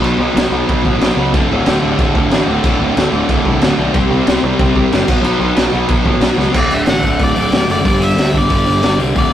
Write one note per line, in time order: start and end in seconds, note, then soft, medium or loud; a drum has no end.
0.02 0.12 B1 loud
0.02 0.18 B2 medium
0.02 0.20 F#3 loud
0.02 0.20 B3 loud
0.02 crash medium
0.18 0.28 B1 loud
0.18 0.36 B2 medium
0.18 0.35 F#3 medium
0.18 0.34 B3 loud
0.34 0.45 B1 medium
0.34 0.50 B2 medium
0.34 0.52 F#3 medium
0.34 0.52 B3 loud
0.34 snare loud
0.34 crash medium
0.50 0.60 B1 loud
0.50 0.67 B2 medium
0.50 0.67 F#3 medium
0.50 0.66 B3 loud
0.67 0.79 B1 medium
0.67 0.82 B2 medium
0.67 0.84 F#3 medium
0.67 0.84 B3 medium
0.67 kick loud
0.67 crash medium
0.84 0.95 A1 medium
0.84 0.99 B2 medium
0.84 0.99 F#3 medium
0.84 0.98 B3 loud
0.84 kick medium
0.99 1.09 B1 loud
0.99 1.14 B2 medium
0.99 1.16 F#3 medium
0.99 1.16 B3 loud
0.99 snare loud
0.99 crash medium
1.15 1.35 C#2 medium
1.15 1.32 B2 medium
1.15 1.33 F#3 medium
1.15 1.33 B3 medium
1.33 1.43 D1 medium
1.33 1.52 D2 medium
1.33 1.50 A2 loud
1.33 1.50 D3 loud
1.33 kick loud
1.33 crash medium
1.49 1.59 D1 loud
1.49 1.66 D2 medium
1.49 1.66 A2 medium
1.49 1.68 D3 loud
1.66 1.76 D1 medium
1.66 1.83 D2 medium
1.66 1.82 A2 medium
1.66 1.82 D3 medium
1.66 snare loud
1.66 crash medium
1.82 1.93 D1 medium
1.82 1.97 D2 medium
1.82 1.98 A2 medium
1.82 1.99 D3 loud
1.98 2.08 D1 medium
1.98 2.15 D2 medium
1.98 2.14 A2 medium
1.98 2.13 D3 medium
1.98 kick loud
1.98 crash medium
2.15 2.25 D1 medium
2.15 2.31 D2 medium
2.15 2.31 A2 medium
2.15 2.33 D3 medium
2.15 kick medium
2.30 2.40 A1 loud
2.30 2.48 D2 loud
2.30 2.48 A2 loud
2.30 2.46 D3 loud
2.30 snare loud
2.30 crash medium
2.47 2.58 D1 medium
2.47 2.63 D2 medium
2.47 2.64 A2 medium
2.47 2.64 D3 medium
2.64 2.74 D1 medium
2.64 2.81 D2 medium
2.64 2.80 A2 loud
2.64 2.80 D3 loud
2.64 kick loud
2.64 crash medium
2.79 2.89 D1 loud
2.79 2.96 D2 medium
2.79 2.96 A2 medium
2.79 2.97 D3 medium
2.97 3.06 D1 medium
2.97 3.13 D2 medium
2.97 3.12 A2 medium
2.97 3.11 D3 medium
2.97 snare loud
2.97 crash medium
3.11 3.22 D1 medium
3.11 3.27 D2 medium
3.11 3.28 A2 medium
3.11 3.29 D3 loud
3.28 3.38 D1 medium
3.28 3.45 D2 medium
3.28 3.44 A2 medium
3.28 3.43 D3 medium
3.28 kick loud
3.28 crash medium
3.44 3.54 C2 medium
3.44 3.59 D2 medium
3.44 3.61 A2 medium
3.44 3.61 D3 medium
3.44 kick medium
3.60 3.71 D1 loud
3.60 3.77 D2 medium
3.60 3.77 A2 loud
3.60 3.75 D3 loud
3.60 snare loud
3.60 crash medium
3.77 3.88 B1 medium
3.77 3.93 D2 medium
3.77 3.93 A2 medium
3.77 3.92 D3 medium
3.94 4.04 C2 medium
3.94 4.11 C3 medium
3.94 4.10 G3 loud
3.94 4.09 C4 loud
3.94 kick loud
3.94 crash medium
4.10 4.20 C2 loud
4.10 4.26 C3 medium
4.10 4.27 G3 medium
4.10 4.28 C4 loud
4.27 4.37 C2 medium
4.27 4.42 C3 medium
4.27 4.41 G3 medium
4.27 4.40 C4 loud
4.27 snare loud
4.27 crash medium
4.42 4.53 C2 loud
4.42 4.59 C3 medium
4.42 4.60 G3 loud
4.42 4.60 C4 loud
4.59 4.69 C2 medium
4.59 4.77 C3 medium
4.59 4.76 G3 medium
4.59 4.75 C4 loud
4.59 kick loud
4.59 crash medium
4.75 4.85 C2 medium
4.75 4.91 C3 medium
4.75 4.92 G3 medium
4.75 4.92 C4 loud
4.75 kick medium
4.92 5.03 G1 loud
4.92 5.07 C3 loud
4.92 5.08 G3 loud
4.92 5.08 C4 loud
4.92 snare loud
4.92 crash medium
5.08 5.18 B1 medium
5.08 5.22 B2 loud
5.08 5.22 F#3 loud
5.08 5.21 B3 loud
5.08 kick loud
5.08 crash medium
5.22 5.33 B1 loud
5.22 5.38 B2 medium
5.22 5.39 F#3 loud
5.22 5.39 B3 loud
5.22 crash medium
5.39 5.49 B1 loud
5.39 5.56 B2 medium
5.39 5.55 F#3 loud
5.39 5.54 B3 medium
5.55 5.67 B1 medium
5.55 5.72 B2 medium
5.55 5.73 F#3 medium
5.55 5.73 B3 loud
5.55 snare loud
5.55 crash medium
5.73 5.83 B1 medium
5.73 5.89 B2 medium
5.73 5.88 F#3 medium
5.73 5.87 B3 medium
5.88 5.99 B1 medium
5.88 6.04 B2 medium
5.88 6.05 F#3 medium
5.88 6.06 B3 medium
5.88 kick loud
5.88 crash medium
6.05 6.15 A1 medium
6.05 6.22 B2 medium
6.05 6.22 F#3 medium
6.05 6.20 B3 medium
6.05 kick medium
6.20 6.31 B1 medium
6.20 6.37 B2 medium
6.20 6.36 F#3 loud
6.20 6.38 B3 loud
6.20 snare loud
6.20 crash medium
6.38 6.48 C#2 medium
6.38 6.52 B2 medium
6.38 6.53 F#3 medium
6.38 6.54 B3 medium
6.38 snare medium
6.53 6.84 D1 medium
6.53 6.71 D2 medium
6.53 6.70 A2 medium
6.53 6.69 D3 loud
6.53 kick loud
6.53 crash loud
6.58 6.73 D5 loud
6.71 6.85 D2 medium
6.71 6.87 A2 medium
6.71 6.87 D3 medium
6.71 6.79 E5 loud
6.71 open hi-hat medium
6.86 7.02 A1 medium
6.86 7.03 D2 medium
6.86 7.03 A2 medium
6.86 7.02 D3 medium
6.86 7.22 F#5 loud
6.86 snare loud
6.86 open hi-hat medium
7.03 7.18 D1 medium
7.03 7.18 D2 medium
7.03 7.18 A2 medium
7.03 7.19 D3 medium
7.03 kick medium
7.03 open hi-hat medium
7.19 7.34 D1 medium
7.19 7.35 D2 loud
7.19 7.35 A2 medium
7.19 7.34 D3 loud
7.19 kick loud
7.19 open hi-hat medium
7.23 7.67 D5 medium
7.35 7.51 D1 medium
7.35 7.50 D2 medium
7.35 7.51 A2 medium
7.35 7.51 D3 loud
7.35 open hi-hat medium
7.51 7.67 D1 medium
7.51 7.67 D2 medium
7.51 7.66 A2 medium
7.51 7.65 D3 medium
7.51 snare loud
7.51 open hi-hat medium
7.67 7.83 F#1 medium
7.67 7.83 D2 medium
7.67 7.83 A2 medium
7.67 7.83 D3 medium
7.67 open hi-hat medium
7.72 8.03 D5 loud
7.84 8.15 G1 medium
7.84 8.00 G2 loud
7.84 7.99 D3 loud
7.84 7.98 G3 medium
7.84 kick loud
7.84 open hi-hat medium
7.99 8.14 G2 medium
7.99 8.15 D3 medium
7.99 8.16 G3 medium
7.99 8.36 E5 loud
7.99 open hi-hat medium
8.15 8.32 D2 medium
8.15 8.33 G2 medium
8.15 8.32 D3 medium
8.15 8.32 G3 loud
8.15 open hi-hat medium
8.19 snare loud
8.33 8.49 G1 medium
8.33 8.47 G2 medium
8.33 8.48 D3 medium
8.33 8.48 G3 medium
8.33 kick medium
8.33 open hi-hat medium
8.38 8.97 D5 loud
8.48 8.65 G1 medium
8.48 8.65 G2 medium
8.48 8.65 D3 medium
8.48 8.64 G3 loud
8.48 kick loud
8.48 open hi-hat medium
8.65 8.82 G1 medium
8.65 8.80 G2 medium
8.65 8.81 D3 medium
8.65 8.81 G3 medium
8.65 open hi-hat medium
8.81 8.97 G1 loud
8.81 8.99 G2 medium
8.81 8.98 D3 medium
8.81 8.97 G3 loud
8.81 snare loud
8.81 open hi-hat medium
8.98 9.13 C2 medium
8.98 9.14 G2 medium
8.98 9.14 D3 medium
8.98 9.14 G3 medium
8.98 open hi-hat medium
9.15 9.33 D1 medium
9.15 9.33 D2 medium
9.15 9.32 A2 loud
9.15 9.32 D3 loud
9.15 9.33 D5 loud
9.15 kick loud
9.15 open hi-hat medium